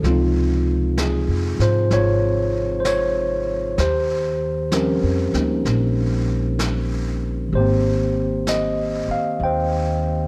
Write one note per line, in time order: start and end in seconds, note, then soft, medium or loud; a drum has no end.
0.00 1.24 C#2 medium
0.00 3.75 F3 soft
0.00 3.77 G#3 soft
0.00 0.21 A4 soft
0.04 3.79 C3 soft
0.04 1.01 F4 medium
0.04 brush sweep soft
0.04 snare soft
0.08 1.89 C4 soft
0.08 3.81 D#4 soft
0.97 1.62 G#4 medium
0.97 brush sweep soft
0.97 snare soft
0.97 hi-hat pedal soft
1.28 1.57 F2 soft
1.59 1.88 G#2 medium
1.59 1.92 F4 soft
1.59 1.90 C5 medium
1.59 snare soft
1.91 3.74 G#1 medium
1.91 3.75 F4 medium
1.91 2.77 C#5 medium
1.91 brush sweep soft
1.91 snare soft
2.80 2.85 C5 medium
2.85 3.75 C#5 medium
2.85 brush sweep soft
2.85 snare soft
2.85 hi-hat pedal soft
3.78 4.99 D#2 medium
3.78 4.74 G4 medium
3.78 4.69 C5 medium
3.78 brush sweep soft
3.78 snare soft
4.72 7.53 F3 soft
4.72 7.53 G3 soft
4.72 7.53 C4 soft
4.72 5.34 C#4 medium
4.72 6.57 G4 soft
4.72 6.56 A#4 medium
4.72 brush sweep soft
4.72 snare soft
4.72 hi-hat pedal soft
5.03 5.32 F2 soft
5.34 5.63 D2 medium
5.34 7.53 A#3 soft
5.34 7.53 C#4 soft
5.34 7.54 D#4 soft
5.34 snare soft
5.65 7.49 A#1 medium
5.65 brush sweep soft
5.65 snare soft
6.59 brush sweep soft
6.59 snare soft
6.59 hi-hat pedal soft
7.49 9.04 G#1 medium
7.49 10.28 D#3 soft
7.49 brush sweep soft
7.53 10.28 A#3 soft
7.53 7.56 G4 soft
7.53 8.50 C5 medium
7.57 10.28 C4 soft
7.57 9.38 G4 soft
8.47 9.05 D#5 medium
8.47 brush sweep soft
8.47 snare soft
8.47 hi-hat pedal soft
9.08 9.43 F5 medium
9.08 muted upright bass stroke soft
9.40 10.28 D#2 medium
9.40 10.28 G5 medium
9.40 brush sweep soft
9.45 10.28 C5 medium